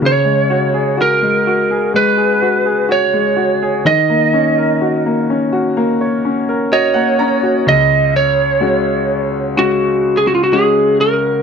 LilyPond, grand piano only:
\new Staff \with { instrumentName = "Grand piano" } { \time 4/4 \key des \mixolydian \tempo 4 = 63 << { r1 | r2. ees''16 ges''16 bes''8 | r1 | } \\ { des16 aes16 ges'16 aes'16 ges'16 aes16 ges'16 aes'16 aes16 aes'16 ges'16 aes'16 ges'16 aes16 ges'16 aes'16 | ees16 bes16 des'16 bes'16 ges'16 bes16 des'16 ges'16 bes16 des''16 des'16 bes'16 ges'16 bes16 des'16 ges'16 | <des, des>4 <aes des' ges'>4 <aes des' ges'>4 <aes des' ges'>4 | } >> }